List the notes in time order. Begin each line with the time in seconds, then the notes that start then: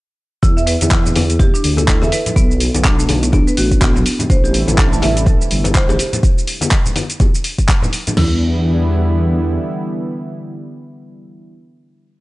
0.43 E2 E4, kick, closed hi-hat, shaker
0.57 E5, shaker
0.67 B4, open hi-hat, shaker
0.81 E2, closed hi-hat, high conga, shaker
0.91 E4, kick, clap, closed hi-hat, shaker
1.06 low conga, shaker
1.16 E2, open hi-hat, high conga, shaker
1.30 closed hi-hat, shaker
1.39 G4, kick, closed hi-hat, low conga, shaker
1.54 D4, shaker
1.64 D2, open hi-hat, shaker
1.77 A4, closed hi-hat, high conga, shaker
1.88 E4, kick, clap, closed hi-hat, shaker
2.02 E2 A4 E5, high conga, shaker
2.12 B4, open hi-hat, shaker
2.26 closed hi-hat, low conga, shaker
2.36 B1 B3, kick, closed hi-hat, shaker
2.51 shaker
2.60 open hi-hat, shaker
2.75 B1, closed hi-hat, high conga, shaker
2.85 D4, kick, clap, closed hi-hat, shaker
2.99 A3, shaker
3.09 B1, open hi-hat, high conga, shaker
3.23 E4, closed hi-hat, shaker
3.32 B3 D4, kick, closed hi-hat, high conga, shaker
3.47 B4, shaker
3.57 A1 F#4, open hi-hat, shaker
3.71 kick, closed hi-hat, shaker
3.81 B3, kick, clap, closed hi-hat, shaker
3.96 B1, low conga, shaker
4.06 open hi-hat, shaker
4.19 closed hi-hat, high conga, low conga, shaker
4.29 A1 C3 E3 G3 A3 E4 C5, kick, closed hi-hat, shaker
4.44 G4, shaker
4.54 open hi-hat, shaker
4.68 A1, closed hi-hat, high conga, shaker
4.78 A4, kick, clap, closed hi-hat, shaker
4.92 A5, low conga, shaker
5.02 A1 E5, open hi-hat, high conga, shaker
5.17 closed hi-hat, shaker
5.26 A4, kick, closed hi-hat, low conga, shaker
5.42 shaker
5.51 G1, open hi-hat, shaker
5.64 closed hi-hat, high conga, shaker
5.75 C5, kick, clap, closed hi-hat, shaker
5.89 A1 G4, high conga, shaker
5.99 open hi-hat, shaker
6.13 closed hi-hat, low conga, shaker
6.23 kick, closed hi-hat, shaker
6.38 shaker
6.47 open hi-hat, shaker
6.61 closed hi-hat, high conga, shaker
6.71 kick, clap, closed hi-hat, shaker
6.86 low conga, shaker
6.96 open hi-hat, high conga, shaker
7.10 closed hi-hat, shaker
7.20 kick, closed hi-hat, high conga, shaker
7.35 shaker
7.44 open hi-hat, shaker
7.58 kick, closed hi-hat, shaker
7.69 kick, clap, closed hi-hat, shaker
7.82 low conga, shaker
7.93 open hi-hat, shaker
8.07 closed hi-hat, high conga, low conga, shaker
8.17 E2 D3 E3 G3 B3 E4, snare, floor tom, crash